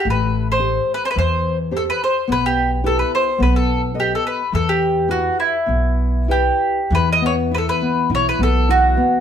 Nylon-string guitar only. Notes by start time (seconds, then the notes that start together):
0.05 A3
0.59 G4 A4 C5
1.15 E3
1.71 G4 A4 C5
2.28 B3
2.84 E4 G4 B4
3.38 B3
3.94 A4 B4 D#5
4.52 E3
5.08 E4 G4 B4
5.66 B2
6.28 E4 G4 B4
6.92 E3
7.21 B3
7.51 E4
7.82 B3
8.11 E4
8.40 B3
8.69 E4
8.97 B3